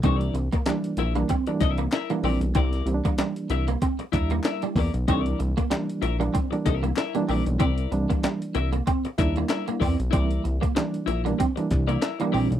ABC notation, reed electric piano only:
X:1
M:4/4
L:1/16
Q:"Swing 16ths" 1/4=95
K:Cmix
V:1 name="Reed electric piano"
[E,G,B,D]3 z [E,G,B,D]2 z [E,G,B,D] z [E,G,B,D]3 z [E,G,B,D]3 | z2 [E,G,B,CD]4- [E,G,B,CD] z3 [G,B,DE]4 z2 | [E,G,B,D]3 z [E,G,B,D]2 z [E,G,B,D] z [E,G,B,D]3 z [_E,=E,G,B,D]3 | z2 [E,G,B,D]4- [E,G,B,D] z3 [G,B,DE]4 z2 |
[E,G,B,E]3 z [E,G,B,D]2 z [E,G,B,D] z [E,G,B,D]3 z [E,G,B,D]3 |]